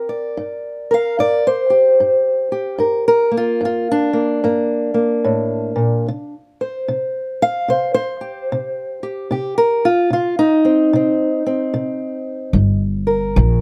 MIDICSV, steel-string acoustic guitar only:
0, 0, Header, 1, 2, 480
1, 0, Start_track
1, 0, Key_signature, -2, "minor"
1, 0, Tempo, 810811
1, 1663, Time_signature, 4, 2, 24, 8
1, 8058, End_track
2, 0, Start_track
2, 0, Title_t, "Steel-string acoustic guitar"
2, 0, Program_c, 0, 25
2, 0, Note_on_c, 0, 43, 80
2, 0, Note_on_c, 0, 70, 49
2, 54, Note_on_c, 0, 74, 51
2, 189, Note_off_c, 0, 43, 0
2, 221, Note_on_c, 0, 43, 67
2, 535, Note_off_c, 0, 70, 0
2, 537, Note_on_c, 0, 70, 48
2, 553, Note_off_c, 0, 74, 0
2, 556, Note_on_c, 0, 77, 90
2, 666, Note_off_c, 0, 43, 0
2, 703, Note_on_c, 0, 43, 75
2, 708, Note_off_c, 0, 77, 0
2, 711, Note_on_c, 0, 74, 92
2, 866, Note_off_c, 0, 74, 0
2, 868, Note_off_c, 0, 70, 0
2, 870, Note_on_c, 0, 72, 95
2, 1007, Note_on_c, 0, 67, 46
2, 1147, Note_off_c, 0, 43, 0
2, 1185, Note_on_c, 0, 43, 71
2, 1489, Note_off_c, 0, 67, 0
2, 1491, Note_on_c, 0, 67, 47
2, 1628, Note_off_c, 0, 43, 0
2, 1648, Note_on_c, 0, 43, 75
2, 1656, Note_on_c, 0, 70, 52
2, 1815, Note_off_c, 0, 70, 0
2, 1822, Note_on_c, 0, 70, 85
2, 1827, Note_off_c, 0, 72, 0
2, 1960, Note_off_c, 0, 67, 0
2, 1962, Note_on_c, 0, 58, 48
2, 1983, Note_off_c, 0, 70, 0
2, 1997, Note_on_c, 0, 65, 86
2, 2100, Note_off_c, 0, 43, 0
2, 2135, Note_on_c, 0, 43, 72
2, 2150, Note_off_c, 0, 65, 0
2, 2161, Note_on_c, 0, 65, 83
2, 2312, Note_off_c, 0, 65, 0
2, 2318, Note_on_c, 0, 62, 84
2, 2440, Note_off_c, 0, 58, 0
2, 2447, Note_on_c, 0, 58, 51
2, 2583, Note_off_c, 0, 43, 0
2, 2622, Note_off_c, 0, 58, 0
2, 2626, Note_on_c, 0, 43, 76
2, 2629, Note_on_c, 0, 58, 52
2, 2919, Note_off_c, 0, 58, 0
2, 2926, Note_on_c, 0, 58, 45
2, 3069, Note_off_c, 0, 43, 0
2, 3104, Note_on_c, 0, 45, 61
2, 3404, Note_off_c, 0, 45, 0
2, 3408, Note_on_c, 0, 46, 63
2, 3585, Note_off_c, 0, 58, 0
2, 3586, Note_off_c, 0, 46, 0
2, 3602, Note_on_c, 0, 48, 75
2, 3751, Note_off_c, 0, 62, 0
2, 3913, Note_on_c, 0, 72, 50
2, 4037, Note_off_c, 0, 48, 0
2, 4075, Note_on_c, 0, 48, 69
2, 4394, Note_on_c, 0, 77, 103
2, 4514, Note_off_c, 0, 48, 0
2, 4549, Note_off_c, 0, 77, 0
2, 4549, Note_on_c, 0, 48, 77
2, 4555, Note_off_c, 0, 72, 0
2, 4557, Note_on_c, 0, 72, 87
2, 4696, Note_off_c, 0, 72, 0
2, 4703, Note_on_c, 0, 72, 92
2, 4860, Note_on_c, 0, 67, 47
2, 4991, Note_off_c, 0, 48, 0
2, 5044, Note_on_c, 0, 48, 74
2, 5343, Note_off_c, 0, 67, 0
2, 5345, Note_on_c, 0, 67, 50
2, 5478, Note_off_c, 0, 48, 0
2, 5509, Note_on_c, 0, 48, 79
2, 5517, Note_off_c, 0, 67, 0
2, 5517, Note_on_c, 0, 67, 53
2, 5664, Note_off_c, 0, 72, 0
2, 5667, Note_off_c, 0, 67, 0
2, 5669, Note_on_c, 0, 70, 91
2, 5827, Note_off_c, 0, 70, 0
2, 5831, Note_on_c, 0, 65, 89
2, 5951, Note_off_c, 0, 48, 0
2, 5981, Note_on_c, 0, 48, 68
2, 5988, Note_off_c, 0, 65, 0
2, 5997, Note_on_c, 0, 65, 79
2, 6147, Note_off_c, 0, 65, 0
2, 6150, Note_on_c, 0, 63, 93
2, 6303, Note_on_c, 0, 60, 50
2, 6427, Note_off_c, 0, 48, 0
2, 6472, Note_on_c, 0, 48, 78
2, 6474, Note_off_c, 0, 60, 0
2, 6485, Note_on_c, 0, 60, 50
2, 6775, Note_off_c, 0, 60, 0
2, 6787, Note_on_c, 0, 60, 49
2, 6912, Note_off_c, 0, 48, 0
2, 6948, Note_on_c, 0, 48, 77
2, 7390, Note_off_c, 0, 48, 0
2, 7414, Note_off_c, 0, 60, 0
2, 7425, Note_on_c, 0, 43, 73
2, 7587, Note_off_c, 0, 63, 0
2, 7736, Note_on_c, 0, 70, 52
2, 7869, Note_off_c, 0, 43, 0
2, 7915, Note_on_c, 0, 43, 73
2, 8058, Note_off_c, 0, 43, 0
2, 8058, Note_off_c, 0, 70, 0
2, 8058, End_track
0, 0, End_of_file